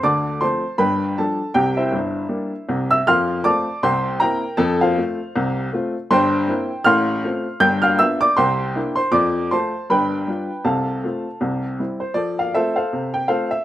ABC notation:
X:1
M:4/4
L:1/8
Q:"Swing" 1/4=158
K:F
V:1 name="Upright piano"
[dad']2 [cac']2 [=Bg=b]2 [Aa]2 | [Gg] [Ece]4- [Ece] z [ee'] | [fc'f']2 [dad']2 [cgc']2 [Bgb]2 | [Aa] [Fcf]4- [Fcf] z2 |
[cgc']4 [fc'f']4 | [gg'] [ff'] [ee'] [dd'] [cgc']3 [cc'] | [dd']2 [cac']2 [=Bg=b]4 | [Afa]6 z c |
d f [Ace] [Acf]2 g [Acf] e |]
V:2 name="Upright piano"
[D,,D,]2 [F,A,C]2 [G,,,G,,]2 [F,G,D]2 | [C,,C,]2 [G,,,G,,]2 [G,B,D]2 [C,,C,]2 | [F,,F,]2 [A,CF]2 [C,,C,]2 [B,CE]2 | [F,,F,]2 [A,CF]2 [C,,C,]2 [A,CF]2 |
[G,,,G,,]2 [B,CE]2 [A,,,A,,]2 [A,CF]2 | [G,,,G,,]2 [=B,DF]2 [C,,C,]2 [_B,DE]2 | [F,,F,]2 [A,F]2 [G,,,G,,]2 [G,DF]2 | [C,,C,]2 [A,CF]2 [C,,C,]2 [G,CE]2 |
[F,A]2 [A,CF]2 C,2 [A,CF]2 |]